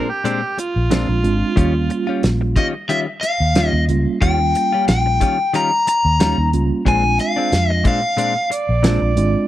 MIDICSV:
0, 0, Header, 1, 9, 480
1, 0, Start_track
1, 0, Tempo, 660793
1, 1144, Time_signature, 4, 2, 24, 8
1, 6883, End_track
2, 0, Start_track
2, 0, Title_t, "Overdriven electric guitar"
2, 0, Program_c, 0, 29
2, 1867, Note_on_c, 0, 75, 81
2, 1931, Note_off_c, 0, 75, 0
2, 2101, Note_on_c, 0, 76, 100
2, 2166, Note_off_c, 0, 76, 0
2, 2332, Note_on_c, 0, 77, 86
2, 2674, Note_off_c, 0, 77, 0
2, 2674, Note_on_c, 0, 75, 86
2, 2789, Note_off_c, 0, 75, 0
2, 3063, Note_on_c, 0, 79, 81
2, 3514, Note_off_c, 0, 79, 0
2, 3548, Note_on_c, 0, 79, 68
2, 4033, Note_off_c, 0, 79, 0
2, 4036, Note_on_c, 0, 82, 109
2, 4267, Note_off_c, 0, 82, 0
2, 4276, Note_on_c, 0, 82, 97
2, 4720, Note_off_c, 0, 82, 0
2, 4998, Note_on_c, 0, 80, 93
2, 5231, Note_off_c, 0, 80, 0
2, 5234, Note_on_c, 0, 77, 95
2, 5604, Note_off_c, 0, 77, 0
2, 5604, Note_on_c, 0, 75, 95
2, 5715, Note_off_c, 0, 75, 0
2, 5724, Note_on_c, 0, 77, 82
2, 6163, Note_off_c, 0, 77, 0
2, 6883, End_track
3, 0, Start_track
3, 0, Title_t, "Harmonica"
3, 0, Program_c, 1, 22
3, 0, Note_on_c, 1, 70, 77
3, 77, Note_on_c, 1, 67, 80
3, 88, Note_off_c, 1, 70, 0
3, 416, Note_off_c, 1, 67, 0
3, 430, Note_on_c, 1, 65, 97
3, 1726, Note_off_c, 1, 65, 0
3, 6188, Note_on_c, 1, 74, 90
3, 6883, Note_off_c, 1, 74, 0
3, 6883, End_track
4, 0, Start_track
4, 0, Title_t, "Tine electric piano"
4, 0, Program_c, 2, 4
4, 652, Note_on_c, 2, 56, 69
4, 654, Note_on_c, 2, 60, 66
4, 657, Note_on_c, 2, 62, 70
4, 659, Note_on_c, 2, 65, 76
4, 864, Note_off_c, 2, 56, 0
4, 865, Note_off_c, 2, 60, 0
4, 867, Note_off_c, 2, 62, 0
4, 868, Note_off_c, 2, 65, 0
4, 895, Note_on_c, 2, 60, 67
4, 896, Note_on_c, 2, 56, 73
4, 898, Note_on_c, 2, 62, 75
4, 901, Note_on_c, 2, 65, 81
4, 1106, Note_off_c, 2, 56, 0
4, 1106, Note_off_c, 2, 60, 0
4, 1107, Note_off_c, 2, 62, 0
4, 1108, Note_off_c, 2, 65, 0
4, 1134, Note_on_c, 2, 55, 79
4, 1135, Note_on_c, 2, 58, 72
4, 1139, Note_on_c, 2, 61, 75
4, 1140, Note_on_c, 2, 65, 95
4, 1960, Note_off_c, 2, 55, 0
4, 1961, Note_off_c, 2, 58, 0
4, 1962, Note_off_c, 2, 61, 0
4, 1963, Note_off_c, 2, 65, 0
4, 2579, Note_on_c, 2, 55, 60
4, 2581, Note_on_c, 2, 58, 57
4, 2582, Note_on_c, 2, 61, 60
4, 2587, Note_on_c, 2, 65, 63
4, 2787, Note_off_c, 2, 55, 0
4, 2789, Note_off_c, 2, 58, 0
4, 2789, Note_off_c, 2, 61, 0
4, 2791, Note_off_c, 2, 65, 0
4, 2828, Note_on_c, 2, 55, 67
4, 2829, Note_on_c, 2, 58, 60
4, 2831, Note_on_c, 2, 61, 61
4, 2832, Note_on_c, 2, 65, 72
4, 3032, Note_off_c, 2, 55, 0
4, 3033, Note_off_c, 2, 58, 0
4, 3034, Note_off_c, 2, 61, 0
4, 3034, Note_off_c, 2, 65, 0
4, 3064, Note_on_c, 2, 58, 60
4, 3065, Note_on_c, 2, 55, 65
4, 3067, Note_on_c, 2, 61, 60
4, 3070, Note_on_c, 2, 65, 75
4, 3884, Note_off_c, 2, 58, 0
4, 3885, Note_off_c, 2, 55, 0
4, 3886, Note_off_c, 2, 61, 0
4, 3887, Note_off_c, 2, 65, 0
4, 4501, Note_on_c, 2, 55, 62
4, 4501, Note_on_c, 2, 58, 60
4, 4505, Note_on_c, 2, 63, 70
4, 4506, Note_on_c, 2, 61, 52
4, 4708, Note_off_c, 2, 55, 0
4, 4708, Note_off_c, 2, 58, 0
4, 4710, Note_off_c, 2, 61, 0
4, 4710, Note_off_c, 2, 63, 0
4, 4745, Note_on_c, 2, 55, 58
4, 4748, Note_on_c, 2, 58, 57
4, 4750, Note_on_c, 2, 61, 66
4, 4751, Note_on_c, 2, 65, 78
4, 4950, Note_off_c, 2, 55, 0
4, 4951, Note_off_c, 2, 58, 0
4, 4952, Note_off_c, 2, 61, 0
4, 4953, Note_off_c, 2, 65, 0
4, 4979, Note_on_c, 2, 56, 73
4, 4979, Note_on_c, 2, 60, 60
4, 4983, Note_on_c, 2, 62, 62
4, 4985, Note_on_c, 2, 65, 78
4, 5801, Note_off_c, 2, 56, 0
4, 5801, Note_off_c, 2, 60, 0
4, 5803, Note_off_c, 2, 62, 0
4, 5804, Note_off_c, 2, 65, 0
4, 6413, Note_on_c, 2, 56, 68
4, 6416, Note_on_c, 2, 60, 66
4, 6417, Note_on_c, 2, 62, 75
4, 6421, Note_on_c, 2, 65, 83
4, 6623, Note_off_c, 2, 56, 0
4, 6624, Note_off_c, 2, 60, 0
4, 6625, Note_off_c, 2, 62, 0
4, 6627, Note_off_c, 2, 65, 0
4, 6655, Note_on_c, 2, 56, 84
4, 6660, Note_on_c, 2, 60, 75
4, 6660, Note_on_c, 2, 62, 74
4, 6665, Note_on_c, 2, 65, 83
4, 6863, Note_off_c, 2, 56, 0
4, 6866, Note_off_c, 2, 60, 0
4, 6866, Note_off_c, 2, 62, 0
4, 6869, Note_off_c, 2, 65, 0
4, 6883, End_track
5, 0, Start_track
5, 0, Title_t, "Clean electric guitar"
5, 0, Program_c, 3, 27
5, 176, Note_on_c, 3, 46, 81
5, 180, Note_on_c, 3, 56, 93
5, 184, Note_on_c, 3, 60, 87
5, 187, Note_on_c, 3, 62, 92
5, 295, Note_off_c, 3, 62, 0
5, 303, Note_off_c, 3, 60, 0
5, 307, Note_off_c, 3, 56, 0
5, 308, Note_off_c, 3, 46, 0
5, 657, Note_on_c, 3, 46, 56
5, 664, Note_on_c, 3, 56, 54
5, 670, Note_on_c, 3, 60, 66
5, 677, Note_on_c, 3, 62, 70
5, 781, Note_off_c, 3, 62, 0
5, 786, Note_off_c, 3, 60, 0
5, 789, Note_off_c, 3, 46, 0
5, 792, Note_off_c, 3, 56, 0
5, 1133, Note_on_c, 3, 51, 79
5, 1140, Note_on_c, 3, 55, 88
5, 1145, Note_on_c, 3, 61, 84
5, 1147, Note_on_c, 3, 65, 75
5, 1258, Note_off_c, 3, 65, 0
5, 1264, Note_off_c, 3, 61, 0
5, 1267, Note_off_c, 3, 51, 0
5, 1270, Note_off_c, 3, 55, 0
5, 1504, Note_on_c, 3, 65, 51
5, 1518, Note_on_c, 3, 61, 52
5, 1525, Note_on_c, 3, 55, 46
5, 1617, Note_off_c, 3, 55, 0
5, 1619, Note_off_c, 3, 61, 0
5, 1620, Note_off_c, 3, 65, 0
5, 1860, Note_on_c, 3, 51, 55
5, 1868, Note_on_c, 3, 55, 63
5, 1874, Note_on_c, 3, 61, 62
5, 1880, Note_on_c, 3, 65, 59
5, 1985, Note_off_c, 3, 65, 0
5, 1990, Note_off_c, 3, 51, 0
5, 1990, Note_off_c, 3, 61, 0
5, 1994, Note_off_c, 3, 55, 0
5, 2099, Note_on_c, 3, 51, 82
5, 2103, Note_on_c, 3, 55, 74
5, 2110, Note_on_c, 3, 61, 77
5, 2113, Note_on_c, 3, 65, 82
5, 2222, Note_off_c, 3, 65, 0
5, 2229, Note_off_c, 3, 61, 0
5, 2230, Note_off_c, 3, 51, 0
5, 2232, Note_off_c, 3, 55, 0
5, 2585, Note_on_c, 3, 51, 54
5, 2591, Note_on_c, 3, 55, 55
5, 2598, Note_on_c, 3, 61, 61
5, 2604, Note_on_c, 3, 65, 62
5, 2707, Note_off_c, 3, 65, 0
5, 2710, Note_off_c, 3, 61, 0
5, 2712, Note_off_c, 3, 51, 0
5, 2716, Note_off_c, 3, 55, 0
5, 3060, Note_on_c, 3, 51, 75
5, 3067, Note_on_c, 3, 55, 77
5, 3070, Note_on_c, 3, 61, 70
5, 3076, Note_on_c, 3, 65, 79
5, 3187, Note_off_c, 3, 65, 0
5, 3190, Note_off_c, 3, 51, 0
5, 3191, Note_off_c, 3, 61, 0
5, 3194, Note_off_c, 3, 55, 0
5, 3432, Note_on_c, 3, 65, 52
5, 3444, Note_on_c, 3, 61, 42
5, 3451, Note_on_c, 3, 55, 40
5, 3542, Note_off_c, 3, 55, 0
5, 3543, Note_off_c, 3, 65, 0
5, 3545, Note_off_c, 3, 61, 0
5, 3781, Note_on_c, 3, 51, 55
5, 3789, Note_on_c, 3, 55, 62
5, 3794, Note_on_c, 3, 61, 66
5, 3803, Note_on_c, 3, 65, 65
5, 3903, Note_off_c, 3, 65, 0
5, 3908, Note_off_c, 3, 61, 0
5, 3911, Note_off_c, 3, 51, 0
5, 3914, Note_off_c, 3, 55, 0
5, 4021, Note_on_c, 3, 51, 85
5, 4029, Note_on_c, 3, 55, 88
5, 4032, Note_on_c, 3, 61, 81
5, 4036, Note_on_c, 3, 65, 88
5, 4142, Note_off_c, 3, 65, 0
5, 4150, Note_off_c, 3, 51, 0
5, 4150, Note_off_c, 3, 61, 0
5, 4154, Note_off_c, 3, 55, 0
5, 4505, Note_on_c, 3, 51, 49
5, 4510, Note_on_c, 3, 55, 53
5, 4518, Note_on_c, 3, 61, 61
5, 4524, Note_on_c, 3, 65, 57
5, 4627, Note_off_c, 3, 65, 0
5, 4631, Note_off_c, 3, 61, 0
5, 4632, Note_off_c, 3, 51, 0
5, 4635, Note_off_c, 3, 55, 0
5, 4979, Note_on_c, 3, 46, 74
5, 4986, Note_on_c, 3, 56, 78
5, 4990, Note_on_c, 3, 60, 73
5, 4995, Note_on_c, 3, 62, 74
5, 5108, Note_off_c, 3, 62, 0
5, 5109, Note_off_c, 3, 46, 0
5, 5112, Note_off_c, 3, 56, 0
5, 5115, Note_off_c, 3, 60, 0
5, 5349, Note_on_c, 3, 62, 51
5, 5360, Note_on_c, 3, 60, 51
5, 5369, Note_on_c, 3, 56, 39
5, 5459, Note_off_c, 3, 56, 0
5, 5461, Note_off_c, 3, 62, 0
5, 5464, Note_off_c, 3, 60, 0
5, 5695, Note_on_c, 3, 46, 66
5, 5702, Note_on_c, 3, 56, 60
5, 5709, Note_on_c, 3, 60, 55
5, 5714, Note_on_c, 3, 62, 59
5, 5815, Note_off_c, 3, 62, 0
5, 5820, Note_off_c, 3, 60, 0
5, 5826, Note_off_c, 3, 56, 0
5, 5827, Note_off_c, 3, 46, 0
5, 5934, Note_on_c, 3, 46, 76
5, 5940, Note_on_c, 3, 56, 74
5, 5946, Note_on_c, 3, 60, 77
5, 5949, Note_on_c, 3, 62, 92
5, 6057, Note_off_c, 3, 62, 0
5, 6062, Note_off_c, 3, 60, 0
5, 6066, Note_off_c, 3, 46, 0
5, 6069, Note_off_c, 3, 56, 0
5, 6412, Note_on_c, 3, 46, 65
5, 6421, Note_on_c, 3, 56, 68
5, 6429, Note_on_c, 3, 60, 69
5, 6434, Note_on_c, 3, 62, 65
5, 6535, Note_off_c, 3, 62, 0
5, 6542, Note_off_c, 3, 60, 0
5, 6545, Note_off_c, 3, 46, 0
5, 6545, Note_off_c, 3, 56, 0
5, 6883, End_track
6, 0, Start_track
6, 0, Title_t, "Fingered electric bass"
6, 0, Program_c, 4, 33
6, 552, Note_on_c, 4, 34, 74
6, 778, Note_off_c, 4, 34, 0
6, 791, Note_on_c, 4, 34, 76
6, 896, Note_off_c, 4, 34, 0
6, 902, Note_on_c, 4, 32, 88
6, 1024, Note_off_c, 4, 32, 0
6, 1141, Note_on_c, 4, 39, 83
6, 1368, Note_off_c, 4, 39, 0
6, 1626, Note_on_c, 4, 34, 75
6, 1851, Note_off_c, 4, 34, 0
6, 2472, Note_on_c, 4, 39, 74
6, 2698, Note_off_c, 4, 39, 0
6, 2709, Note_on_c, 4, 39, 78
6, 2816, Note_off_c, 4, 39, 0
6, 2821, Note_on_c, 4, 37, 95
6, 2943, Note_off_c, 4, 37, 0
6, 3064, Note_on_c, 4, 39, 75
6, 3290, Note_off_c, 4, 39, 0
6, 3546, Note_on_c, 4, 34, 85
6, 3771, Note_off_c, 4, 34, 0
6, 4393, Note_on_c, 4, 39, 80
6, 4618, Note_off_c, 4, 39, 0
6, 4635, Note_on_c, 4, 39, 84
6, 4738, Note_off_c, 4, 39, 0
6, 4746, Note_on_c, 4, 37, 85
6, 4865, Note_off_c, 4, 37, 0
6, 4987, Note_on_c, 4, 34, 78
6, 5210, Note_off_c, 4, 34, 0
6, 5465, Note_on_c, 4, 41, 81
6, 5689, Note_off_c, 4, 41, 0
6, 6311, Note_on_c, 4, 34, 76
6, 6536, Note_off_c, 4, 34, 0
6, 6550, Note_on_c, 4, 34, 79
6, 6654, Note_off_c, 4, 34, 0
6, 6662, Note_on_c, 4, 32, 105
6, 6782, Note_off_c, 4, 32, 0
6, 6883, End_track
7, 0, Start_track
7, 0, Title_t, "Muted clean electric guitar strokes"
7, 66, Note_on_c, 9, 29, 39
7, 139, Note_off_c, 9, 29, 0
7, 304, Note_on_c, 9, 29, 41
7, 377, Note_off_c, 9, 29, 0
7, 418, Note_on_c, 9, 29, 40
7, 491, Note_off_c, 9, 29, 0
7, 790, Note_on_c, 9, 29, 45
7, 862, Note_off_c, 9, 29, 0
7, 1266, Note_on_c, 9, 29, 45
7, 1339, Note_off_c, 9, 29, 0
7, 1378, Note_on_c, 9, 29, 45
7, 1451, Note_off_c, 9, 29, 0
7, 1622, Note_on_c, 9, 29, 38
7, 1694, Note_off_c, 9, 29, 0
7, 1751, Note_on_c, 9, 29, 43
7, 1823, Note_off_c, 9, 29, 0
7, 2231, Note_on_c, 9, 29, 40
7, 2303, Note_off_c, 9, 29, 0
7, 2345, Note_on_c, 9, 29, 40
7, 2418, Note_off_c, 9, 29, 0
7, 2716, Note_on_c, 9, 29, 42
7, 2788, Note_off_c, 9, 29, 0
7, 3196, Note_on_c, 9, 29, 41
7, 3268, Note_off_c, 9, 29, 0
7, 3309, Note_on_c, 9, 29, 36
7, 3381, Note_off_c, 9, 29, 0
7, 3545, Note_on_c, 9, 29, 35
7, 3618, Note_off_c, 9, 29, 0
7, 3675, Note_on_c, 9, 29, 43
7, 3748, Note_off_c, 9, 29, 0
7, 3912, Note_on_c, 9, 29, 34
7, 3984, Note_off_c, 9, 29, 0
7, 4265, Note_on_c, 9, 29, 38
7, 4338, Note_off_c, 9, 29, 0
7, 4635, Note_on_c, 9, 29, 41
7, 4708, Note_off_c, 9, 29, 0
7, 5117, Note_on_c, 9, 29, 38
7, 5189, Note_off_c, 9, 29, 0
7, 5229, Note_on_c, 9, 29, 43
7, 5302, Note_off_c, 9, 29, 0
7, 5596, Note_on_c, 9, 29, 47
7, 5668, Note_off_c, 9, 29, 0
7, 5824, Note_on_c, 9, 29, 36
7, 5897, Note_off_c, 9, 29, 0
7, 6066, Note_on_c, 9, 29, 39
7, 6139, Note_off_c, 9, 29, 0
7, 6175, Note_on_c, 9, 29, 42
7, 6248, Note_off_c, 9, 29, 0
7, 6544, Note_on_c, 9, 29, 51
7, 6616, Note_off_c, 9, 29, 0
7, 6883, End_track
8, 0, Start_track
8, 0, Title_t, "Muted fingered electric bass strokes"
8, 1028, Note_on_c, 9, 29, 33
8, 1100, Note_off_c, 9, 29, 0
8, 2952, Note_on_c, 9, 29, 36
8, 3025, Note_off_c, 9, 29, 0
8, 4875, Note_on_c, 9, 29, 35
8, 4948, Note_off_c, 9, 29, 0
8, 6794, Note_on_c, 9, 29, 35
8, 6867, Note_off_c, 9, 29, 0
8, 6883, End_track
9, 0, Start_track
9, 0, Title_t, "Drums"
9, 183, Note_on_c, 9, 42, 76
9, 256, Note_off_c, 9, 42, 0
9, 425, Note_on_c, 9, 42, 62
9, 497, Note_off_c, 9, 42, 0
9, 663, Note_on_c, 9, 42, 83
9, 669, Note_on_c, 9, 38, 102
9, 736, Note_off_c, 9, 42, 0
9, 741, Note_off_c, 9, 38, 0
9, 903, Note_on_c, 9, 42, 53
9, 976, Note_off_c, 9, 42, 0
9, 1141, Note_on_c, 9, 36, 94
9, 1143, Note_on_c, 9, 42, 69
9, 1214, Note_off_c, 9, 36, 0
9, 1215, Note_off_c, 9, 42, 0
9, 1381, Note_on_c, 9, 42, 48
9, 1454, Note_off_c, 9, 42, 0
9, 1622, Note_on_c, 9, 42, 69
9, 1627, Note_on_c, 9, 38, 93
9, 1694, Note_off_c, 9, 42, 0
9, 1700, Note_off_c, 9, 38, 0
9, 1862, Note_on_c, 9, 36, 76
9, 1862, Note_on_c, 9, 42, 55
9, 1934, Note_off_c, 9, 42, 0
9, 1935, Note_off_c, 9, 36, 0
9, 2104, Note_on_c, 9, 42, 77
9, 2176, Note_off_c, 9, 42, 0
9, 2344, Note_on_c, 9, 42, 62
9, 2417, Note_off_c, 9, 42, 0
9, 2581, Note_on_c, 9, 42, 74
9, 2587, Note_on_c, 9, 38, 94
9, 2654, Note_off_c, 9, 42, 0
9, 2660, Note_off_c, 9, 38, 0
9, 2823, Note_on_c, 9, 42, 63
9, 2896, Note_off_c, 9, 42, 0
9, 3064, Note_on_c, 9, 42, 74
9, 3065, Note_on_c, 9, 36, 95
9, 3137, Note_off_c, 9, 36, 0
9, 3137, Note_off_c, 9, 42, 0
9, 3306, Note_on_c, 9, 42, 57
9, 3379, Note_off_c, 9, 42, 0
9, 3544, Note_on_c, 9, 42, 71
9, 3550, Note_on_c, 9, 38, 110
9, 3617, Note_off_c, 9, 42, 0
9, 3623, Note_off_c, 9, 38, 0
9, 3785, Note_on_c, 9, 42, 60
9, 3786, Note_on_c, 9, 36, 70
9, 3857, Note_off_c, 9, 42, 0
9, 3859, Note_off_c, 9, 36, 0
9, 4025, Note_on_c, 9, 42, 73
9, 4097, Note_off_c, 9, 42, 0
9, 4266, Note_on_c, 9, 42, 68
9, 4339, Note_off_c, 9, 42, 0
9, 4506, Note_on_c, 9, 42, 83
9, 4512, Note_on_c, 9, 38, 101
9, 4579, Note_off_c, 9, 42, 0
9, 4584, Note_off_c, 9, 38, 0
9, 4746, Note_on_c, 9, 42, 56
9, 4819, Note_off_c, 9, 42, 0
9, 4986, Note_on_c, 9, 36, 85
9, 4989, Note_on_c, 9, 42, 67
9, 5059, Note_off_c, 9, 36, 0
9, 5062, Note_off_c, 9, 42, 0
9, 5224, Note_on_c, 9, 42, 53
9, 5297, Note_off_c, 9, 42, 0
9, 5465, Note_on_c, 9, 42, 74
9, 5471, Note_on_c, 9, 38, 86
9, 5538, Note_off_c, 9, 42, 0
9, 5544, Note_off_c, 9, 38, 0
9, 5701, Note_on_c, 9, 42, 60
9, 5703, Note_on_c, 9, 36, 84
9, 5774, Note_off_c, 9, 42, 0
9, 5775, Note_off_c, 9, 36, 0
9, 5943, Note_on_c, 9, 42, 78
9, 6015, Note_off_c, 9, 42, 0
9, 6186, Note_on_c, 9, 42, 66
9, 6259, Note_off_c, 9, 42, 0
9, 6421, Note_on_c, 9, 42, 83
9, 6426, Note_on_c, 9, 38, 103
9, 6493, Note_off_c, 9, 42, 0
9, 6499, Note_off_c, 9, 38, 0
9, 6661, Note_on_c, 9, 42, 63
9, 6733, Note_off_c, 9, 42, 0
9, 6883, End_track
0, 0, End_of_file